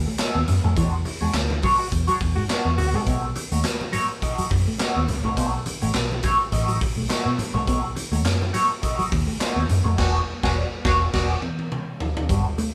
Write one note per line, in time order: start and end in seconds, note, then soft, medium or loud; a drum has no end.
0.06 0.16 A3 medium
0.06 muted clean electric guitar stroke soft
0.19 0.37 F#3 medium
0.19 0.37 C#4 medium
0.19 0.37 D#4 medium
0.19 0.38 A4 loud
0.19 snare loud
0.19 clap medium
0.19 closed hi-hat medium
0.19 muted conga soft
0.35 0.46 D#2 medium
0.35 0.44 B3 medium
0.48 0.62 F#2 medium
0.48 muted clean electric guitar stroke medium
0.48 closed hi-hat medium
0.48 muted conga soft
0.48 high conga medium
0.48 low conga medium
0.64 0.77 F2 medium
0.64 0.75 F#3 soft
0.64 0.73 A3 medium
0.64 0.76 C#4 soft
0.64 0.76 D#4 soft
0.64 0.75 A4 medium
0.64 low conga medium
0.76 1.02 E2 loud
0.76 0.88 E3 medium
0.76 0.94 G#3 medium
0.76 0.93 D4 medium
0.76 0.92 F#4 medium
0.76 0.91 C#5 medium
0.76 kick medium
0.76 closed hi-hat medium
0.76 muted conga soft
0.93 muted clean electric guitar stroke soft
1.05 muted clean electric guitar stroke soft
1.05 open hi-hat medium
1.05 high conga medium
1.21 1.33 E2 medium
1.21 1.30 G#3 medium
1.21 1.33 G#3 soft
1.21 1.33 D4 medium
1.21 1.33 F#4 medium
1.21 1.33 C#5 medium
1.21 high conga medium
1.34 1.59 D2 loud
1.34 muted clean electric guitar stroke soft
1.34 snare medium
1.34 clap medium
1.34 closed hi-hat medium
1.34 muted conga soft
1.50 muted clean electric guitar stroke soft
1.50 high conga medium
1.63 1.74 F#3 medium
1.63 1.81 G#3 medium
1.63 1.79 D4 medium
1.63 1.78 F#4 medium
1.63 1.78 C#5 medium
1.63 kick medium
1.63 open hi-hat medium
1.63 muted conga soft
1.63 low conga medium
1.79 1.87 F#4 medium
1.79 muted clean electric guitar stroke soft
1.91 2.06 E2 medium
1.91 muted clean electric guitar stroke soft
1.91 kick medium
1.91 closed hi-hat medium
2.07 2.17 F#3 medium
2.07 2.19 G#3 medium
2.07 2.19 D4 medium
2.07 2.16 F#4 medium
2.07 2.20 F#4 medium
2.07 2.20 C#5 medium
2.07 closed hi-hat medium
2.20 2.35 E2 medium
2.20 muted clean electric guitar stroke soft
2.20 kick medium
2.20 open hi-hat medium
2.20 muted conga soft
2.20 high conga medium
2.35 2.47 G#2 medium
2.35 2.45 G#3 medium
2.35 2.44 F#4 medium
2.35 muted clean electric guitar stroke soft
2.48 2.67 G#3 medium
2.48 2.67 D4 medium
2.48 2.68 F#4 medium
2.48 2.68 C#5 medium
2.48 snare loud
2.48 clap medium
2.48 closed hi-hat medium
2.48 muted conga soft
2.65 2.76 E2 medium
2.65 2.74 B3 medium
2.77 2.94 D2 medium
2.77 3.02 F#4 loud
2.77 muted clean electric guitar stroke soft
2.77 open hi-hat medium
2.77 muted conga soft
2.77 high conga medium
2.77 low conga medium
2.94 3.05 C2 medium
2.94 3.02 G#3 medium
2.94 3.06 G#3 medium
2.94 3.06 D4 soft
2.94 3.06 F#4 medium
2.94 3.06 C#5 medium
2.94 low conga medium
3.06 3.32 B1 loud
3.06 3.25 A3 medium
3.06 3.17 B3 medium
3.06 3.23 D#4 medium
3.06 3.23 F#4 medium
3.06 3.22 C#5 medium
3.06 kick loud
3.06 closed hi-hat medium
3.06 muted conga soft
3.23 muted clean electric guitar stroke soft
3.35 muted clean electric guitar stroke soft
3.35 closed hi-hat medium
3.35 muted conga soft
3.35 high conga medium
3.52 3.63 D#2 medium
3.52 3.60 A3 medium
3.52 3.63 A3 soft
3.52 3.63 D#4 medium
3.52 3.63 F#4 medium
3.52 3.63 C#5 medium
3.52 closed hi-hat medium
3.52 high conga soft
3.64 muted clean electric guitar stroke soft
3.64 snare loud
3.64 clap medium
3.64 closed hi-hat medium
3.64 muted conga soft
3.80 muted clean electric guitar stroke soft
3.80 high conga medium
3.92 4.04 F#3 medium
3.92 4.10 A3 medium
3.92 4.08 D#4 medium
3.92 4.08 F#4 medium
3.92 4.08 C#5 medium
3.92 closed hi-hat medium
3.92 muted conga soft
3.92 low conga medium
4.09 muted clean electric guitar stroke soft
4.22 4.48 A3 medium
4.22 4.49 D#4 medium
4.22 4.49 F#4 loud
4.22 4.49 D#5 medium
4.22 kick medium
4.22 closed hi-hat medium
4.22 muted conga soft
4.38 4.47 F#3 medium
4.38 muted fingered electric bass stroke medium
4.38 closed hi-hat medium
4.50 4.65 F#2 medium
4.50 muted clean electric guitar stroke soft
4.50 kick medium
4.50 open hi-hat medium
4.50 muted conga soft
4.50 high conga medium
4.68 4.76 A3 medium
4.68 muted clean electric guitar stroke soft
4.78 4.98 A3 medium
4.78 4.98 D#4 medium
4.78 4.98 F#4 medium
4.78 4.98 C#5 medium
4.78 snare loud
4.78 clap medium
4.78 closed hi-hat medium
4.78 muted conga soft
4.96 5.07 D#2 medium
4.96 5.04 B3 medium
5.08 5.23 C#2 medium
5.08 muted clean electric guitar stroke soft
5.08 closed hi-hat medium
5.08 muted conga soft
5.08 high conga medium
5.08 low conga medium
5.24 5.35 C2 medium
5.24 5.33 A3 medium
5.24 5.36 A3 soft
5.24 5.36 D#4 medium
5.24 5.36 F#4 medium
5.24 5.36 C#5 medium
5.24 low conga medium
5.37 5.62 B1 loud
5.37 5.58 A3 medium
5.37 5.48 B3 medium
5.37 5.53 D#4 medium
5.37 5.53 F#4 medium
5.37 5.52 C#5 medium
5.37 kick medium
5.37 closed hi-hat medium
5.54 muted clean electric guitar stroke soft
5.66 muted clean electric guitar stroke soft
5.66 closed hi-hat medium
5.66 muted conga soft
5.66 high conga medium
5.81 5.93 A1 medium
5.81 5.91 A3 medium
5.81 5.93 A3 medium
5.81 5.93 D#4 medium
5.81 5.93 F#4 medium
5.81 5.93 C#5 medium
5.81 closed hi-hat medium
5.81 high conga medium
5.94 6.20 B1 loud
5.94 muted clean electric guitar stroke soft
5.94 snare loud
5.94 clap medium
5.94 closed hi-hat medium
5.94 muted conga soft
6.10 muted clean electric guitar stroke soft
6.10 high conga medium
6.23 6.34 F#3 medium
6.23 6.41 A3 medium
6.23 6.39 D#4 medium
6.23 6.39 F#4 medium
6.23 6.39 C#5 medium
6.23 kick medium
6.23 closed hi-hat medium
6.23 muted conga soft
6.23 low conga medium
6.40 muted clean electric guitar stroke soft
6.52 6.78 A1 medium
6.52 6.79 A3 medium
6.52 6.79 D#4 loud
6.52 6.79 F#4 medium
6.52 6.79 D#5 loud
6.52 kick medium
6.52 closed hi-hat medium
6.52 muted conga soft
6.68 6.77 F#3 medium
6.68 closed hi-hat medium
6.81 muted clean electric guitar stroke soft
6.81 kick loud
6.81 open hi-hat medium
6.81 high conga medium
6.96 7.08 B1 medium
6.96 7.06 A3 medium
6.96 muted clean electric guitar stroke soft
7.08 7.27 A3 medium
7.08 7.28 D#4 medium
7.08 7.28 F#4 medium
7.08 7.28 C#5 medium
7.08 snare loud
7.08 clap medium
7.08 closed hi-hat medium
7.08 muted conga soft
7.26 7.37 B2 loud
7.26 7.35 B3 medium
7.38 muted clean electric guitar stroke soft
7.38 closed hi-hat medium
7.38 muted conga soft
7.38 high conga medium
7.38 low conga medium
7.54 7.68 C2 loud
7.54 7.63 A3 medium
7.54 7.65 A3 medium
7.54 7.65 D#4 soft
7.54 7.66 F#4 medium
7.54 7.66 C#5 medium
7.54 low conga medium
7.66 7.93 B1 loud
7.66 7.85 A3 medium
7.66 7.79 B3 medium
7.66 7.83 D#4 medium
7.66 7.82 F#4 medium
7.66 7.82 C#5 medium
7.66 kick medium
7.66 closed hi-hat medium
7.66 muted conga soft
7.83 muted clean electric guitar stroke soft
7.95 muted clean electric guitar stroke soft
7.95 closed hi-hat medium
7.95 high conga medium
8.12 8.25 D#2 medium
8.12 8.21 A3 medium
8.12 8.24 A3 soft
8.12 8.23 D#4 soft
8.12 8.24 F#4 soft
8.12 8.24 C#5 medium
8.12 closed hi-hat medium
8.12 high conga medium
8.24 8.50 F#2 loud
8.24 muted clean electric guitar stroke soft
8.24 snare loud
8.24 clap medium
8.24 closed hi-hat medium
8.24 muted conga soft
8.41 muted clean electric guitar stroke soft
8.41 high conga medium
8.53 8.65 F#3 medium
8.53 8.71 A3 medium
8.53 8.69 D#4 medium
8.53 8.69 F#4 medium
8.53 8.68 C#5 medium
8.53 closed hi-hat medium
8.53 low conga medium
8.69 muted clean electric guitar stroke soft
8.82 9.09 A3 medium
8.82 9.09 D#4 loud
8.82 9.10 F#4 medium
8.82 9.10 D#5 loud
8.82 kick medium
8.82 closed hi-hat medium
8.82 muted conga soft
8.99 9.07 F#3 medium
8.99 muted fingered electric bass stroke soft
8.99 closed hi-hat medium
9.11 9.26 D#2 medium
9.11 muted clean electric guitar stroke soft
9.11 kick loud
9.11 open hi-hat medium
9.11 muted conga soft
9.11 high conga medium
9.27 9.36 A3 medium
9.27 muted clean electric guitar stroke soft
9.39 9.61 A3 medium
9.39 9.61 D#4 medium
9.39 9.62 F#4 medium
9.39 9.62 C#5 medium
9.39 snare loud
9.39 clap medium
9.39 closed hi-hat medium
9.39 muted conga soft
9.56 9.68 D#2 medium
9.56 9.65 B3 medium
9.69 9.83 F#2 loud
9.69 muted clean electric guitar stroke soft
9.69 closed hi-hat medium
9.69 muted conga soft
9.69 high conga medium
9.69 low conga medium
9.84 9.96 F2 medium
9.84 9.94 A3 medium
9.84 9.97 A3 medium
9.84 9.97 D#4 medium
9.84 9.97 F#4 medium
9.84 9.96 C#5 medium
9.84 low conga medium
9.98 10.18 E1 loud
9.98 10.18 D4 loud
9.98 10.13 F#4 loud
9.98 10.18 F#4 loud
9.98 10.19 G#4 medium
9.98 10.19 C#5 medium
9.98 kick medium
9.98 snare loud
9.98 crash medium
10.43 10.62 E1 medium
10.43 10.63 D4 medium
10.43 10.57 F#4 medium
10.43 10.63 F#4 medium
10.43 10.62 G#4 loud
10.43 10.62 C#5 loud
10.43 kick loud
10.43 snare loud
10.85 11.05 E1 loud
10.85 11.05 D4 medium
10.85 11.00 F#4 loud
10.85 11.05 F#4 medium
10.85 11.06 G#4 medium
10.85 11.06 C#5 loud
10.85 kick loud
10.85 snare loud
11.13 11.34 E1 medium
11.13 11.34 D4 loud
11.13 11.29 F#4 loud
11.13 11.34 F#4 loud
11.13 11.34 G#4 loud
11.13 11.34 D5 loud
11.13 kick medium
11.13 snare loud
11.13 crash medium
11.42 high tom medium
11.59 high tom medium
11.72 mid tom medium
12.00 floor tom medium
12.17 floor tom loud
12.29 12.43 G1 medium
12.29 12.40 G3 medium
12.29 12.47 B3 medium
12.29 12.45 D4 medium
12.29 12.45 F#4 medium
12.29 12.44 B4 medium
12.29 kick medium
12.29 closed hi-hat medium
12.29 muted conga soft
12.45 muted clean electric guitar stroke soft
12.58 12.69 A3 medium
12.58 muted clean electric guitar stroke soft
12.58 closed hi-hat medium
12.58 muted conga soft
12.58 high conga medium